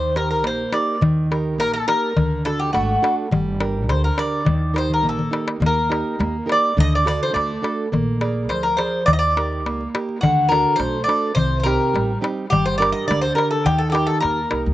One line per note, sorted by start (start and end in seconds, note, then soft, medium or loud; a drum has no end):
0.00 0.43 D#2 medium
0.00 0.42 D#3 medium
0.00 0.17 C5 medium
0.00 darbuka tek soft
0.16 0.62 D#4 soft
0.16 0.62 G4 soft
0.16 0.62 A#4 medium
0.16 0.29 A#4 medium
0.16 darbuka tek medium
0.30 0.45 A#4 medium
0.30 darbuka tek soft
0.43 0.64 A#1 medium
0.43 1.00 A#3 medium
0.43 0.73 C5 medium
0.43 darbuka tek medium
0.72 0.96 D#4 soft
0.72 0.96 G4 soft
0.72 0.97 A#4 soft
0.72 1.00 D5 medium
0.72 darbuka tek medium
1.01 1.59 D#2 medium
1.01 1.58 D#3 medium
1.01 darbuka dum loud
1.31 1.77 D#4 medium
1.31 1.77 G4 soft
1.31 1.77 A#4 medium
1.31 darbuka tek medium
1.58 1.80 A#1 medium
1.58 2.15 A#3 medium
1.58 1.73 A#4 loud
1.58 darbuka tek medium
1.74 1.87 A4 medium
1.87 2.11 D#4 soft
1.87 2.11 G4 soft
1.87 2.45 A#4 loud
1.87 2.11 A#4 medium
1.87 darbuka tek medium
2.17 2.76 D2 medium
2.17 2.73 D3 medium
2.17 darbuka dum medium
2.45 2.92 D4 medium
2.45 2.92 F#4 soft
2.45 2.59 A4 medium
2.45 2.93 A4 medium
2.45 darbuka tek medium
2.60 2.73 G4 medium
2.73 2.95 G#1 medium
2.73 3.30 A3 medium
2.73 3.14 F#4 medium
2.73 darbuka tek medium
3.02 3.26 D4 medium
3.02 3.26 F#4 soft
3.02 3.26 A4 medium
3.02 darbuka tek medium
3.31 3.89 G1 medium
3.31 3.88 G3 medium
3.31 darbuka dum loud
3.60 4.06 D4 soft
3.60 4.07 G4 soft
3.60 4.07 A#4 medium
3.60 darbuka tek medium
3.89 4.09 D2 medium
3.89 4.46 D3 medium
3.89 4.03 C5 medium
3.89 darbuka tek medium
4.04 4.18 A#4 medium
4.17 4.41 D4 medium
4.17 4.41 G4 soft
4.17 4.41 A#4 medium
4.17 4.77 D5 medium
4.17 darbuka tek medium
4.45 5.04 D#2 loud
4.45 5.02 D#3 medium
4.45 darbuka dum loud
4.74 5.21 D#4 soft
4.74 5.21 G4 soft
4.74 5.21 A#4 medium
4.74 darbuka tek medium
4.78 4.92 C5 medium
4.90 5.05 A#4 medium
4.90 darbuka dum soft
5.03 5.24 A#1 medium
5.03 5.59 A#3 medium
5.03 darbuka dum medium
5.09 5.47 A4 medium
5.19 darbuka dum medium
5.31 5.78 D#4 soft
5.31 5.79 G4 soft
5.31 5.79 A#4 medium
5.31 darbuka tek medium
5.48 darbuka tek medium
5.60 6.01 D#2 medium
5.60 6.17 A#3 medium
5.60 darbuka dum loud
5.66 6.46 A#4 medium
5.89 6.36 D#4 medium
5.89 6.36 G4 soft
5.89 6.37 A#4 medium
5.89 darbuka tek medium
6.19 6.40 D#2 loud
6.19 6.75 A#3 medium
6.19 darbuka tek medium
6.46 6.70 D#4 soft
6.46 6.70 G4 soft
6.46 6.71 A#4 medium
6.46 darbuka tek medium
6.52 6.77 D5 loud
6.77 7.17 D2 medium
6.77 7.33 D3 medium
6.77 6.94 D#5 loud
6.77 darbuka dum medium
6.95 7.07 D5 medium
7.05 7.51 D4 medium
7.05 7.51 F#4 soft
7.05 7.52 A4 medium
7.05 7.20 D5 loud
7.05 darbuka tek medium
7.23 7.34 C5 medium
7.33 7.55 D2 medium
7.33 7.90 A3 medium
7.33 7.88 D5 medium
7.33 darbuka tek medium
7.62 7.85 D4 soft
7.62 7.86 F#4 soft
7.62 7.86 A4 medium
7.62 darbuka tek medium
7.92 8.50 A#1 medium
7.92 8.48 A#3 medium
7.92 darbuka dum medium
8.21 8.67 G#4 medium
8.21 8.67 A#4 soft
8.21 8.67 D5 medium
8.21 darbuka tek medium
8.49 8.70 D2 loud
8.49 9.06 F3 medium
8.49 8.63 C5 medium
8.49 darbuka tek medium
8.63 8.77 A#4 medium
8.77 9.02 G#4 medium
8.77 9.02 A#4 medium
8.77 9.04 C5 medium
8.77 9.02 D5 medium
8.77 darbuka tek medium
9.06 9.65 D#2 medium
9.06 9.63 D#3 medium
9.06 9.13 D5 loud
9.06 darbuka dum loud
9.13 9.18 D#5 medium
9.19 9.88 D5 medium
9.23 darbuka tek soft
9.37 9.82 D#4 soft
9.37 9.83 G4 soft
9.37 9.83 A#4 medium
9.37 darbuka tek medium
9.52 darbuka tek soft
9.65 9.85 C#2 medium
9.65 10.21 A#3 medium
9.65 darbuka tek medium
9.81 darbuka tek soft
9.94 10.17 D#4 soft
9.94 10.17 G4 soft
9.94 10.18 A#4 medium
9.94 darbuka tek medium
10.09 darbuka tek soft
10.21 10.63 D2 medium
10.21 10.78 D3 medium
10.21 10.48 F#4 medium
10.21 darbuka dum loud
10.49 10.97 D4 soft
10.49 10.97 F#4 soft
10.49 10.76 A#4 medium
10.49 darbuka tek medium
10.53 10.98 A4 medium
10.76 10.99 B1 medium
10.76 11.35 A3 medium
10.76 11.03 C5 medium
10.76 darbuka tek medium
11.04 11.31 D4 medium
11.04 11.32 D5 medium
11.08 11.31 F#4 medium
11.08 11.31 A4 medium
11.08 darbuka tek medium
11.35 11.76 C2 medium
11.35 11.92 C3 medium
11.35 11.58 C5 loud
11.35 darbuka dum medium
11.60 12.18 A#4 medium
11.60 11.66 C5 medium
11.65 12.11 C4 medium
11.65 12.12 D#4 soft
11.65 12.11 G4 medium
11.65 darbuka tek medium
11.93 12.14 A1 medium
11.93 12.49 G3 medium
11.93 darbuka tek medium
12.21 12.45 C4 medium
12.21 12.45 D#4 soft
12.21 12.45 G4 medium
12.21 darbuka tek medium
12.50 12.91 G1 medium
12.50 13.06 G3 medium
12.50 12.64 G4 loud
12.50 darbuka dum loud
12.66 12.77 C5 medium
12.78 13.25 D4 medium
12.78 13.26 G4 medium
12.78 13.25 A#4 medium
12.78 12.92 D5 loud
12.82 darbuka tek medium
12.92 13.06 D#5 medium
13.08 13.29 D2 medium
13.08 13.63 D3 medium
13.08 13.21 D5 medium
13.08 darbuka tek medium
13.21 13.35 C5 loud
13.35 13.59 D4 soft
13.35 13.59 G4 medium
13.35 13.50 A#4 medium
13.35 13.59 A#4 medium
13.35 darbuka tek medium
13.51 13.64 A4 medium
13.65 14.05 D#2 medium
13.65 14.21 D#3 medium
13.65 13.80 G4 loud
13.65 darbuka dum loud
13.78 13.88 A4 medium
13.78 darbuka tek soft
13.90 14.39 D#4 soft
13.90 14.06 G4 medium
13.90 14.39 G4 soft
13.90 13.94 A4 medium
13.94 14.40 A#4 medium
13.94 darbuka tek medium
14.07 14.20 A4 medium
14.20 14.43 D#2 medium
14.20 14.74 A#3 medium
14.20 14.61 A#4 medium
14.20 darbuka tek medium
14.51 14.64 C2 medium
14.51 14.74 D#4 soft
14.51 14.74 G4 soft
14.51 14.74 A#4 medium
14.51 darbuka tek medium
14.66 14.74 D2 medium